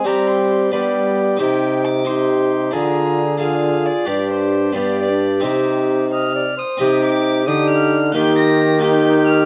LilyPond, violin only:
\new Staff \with { instrumentName = "Violin" } { \time 6/8 \key c \minor \tempo 4. = 89 bes''8 c'''4 r4. | g''4 d'''8 c'''4. | bes''4. f''4 d''8~ | d''8 c''4 d''8 d''4 |
c''4. f'''4 ees'''8~ | ees'''8 d'''4 ees'''8 f'''4 | g'''8 bes'''4 g'''4 f'''8 | }